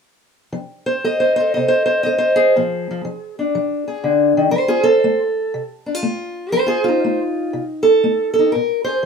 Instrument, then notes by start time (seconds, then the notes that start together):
steel-string acoustic guitar
0.52 F3
0.86 C5
1.04 A4 D#5
1.20 C5
1.36 A4 C5
1.54 C3 D#5
1.68 C5
1.86 C5
2.03 A4 D#5
2.18 C5
2.36 G#4
2.56 A#2 F3
2.91 F3
3.05 F3
3.39 D4
3.55 F3
3.88 G#4
4.04 D3
4.37 D#3
4.51 F3 A4 C5
4.68 F4 G#4
4.84 A4
5.04 A3
5.54 C3
5.86 D4
5.95 F4
6.03 A3
6.51 F3 A4 C5
6.67 F4 G#4
6.84 F4
6.88 D#4
7.04 A3
7.53 C3
7.83 A4
8.04 A3
8.34 A4
8.39 D#4
8.52 A#2 A#4
8.84 G#4 C5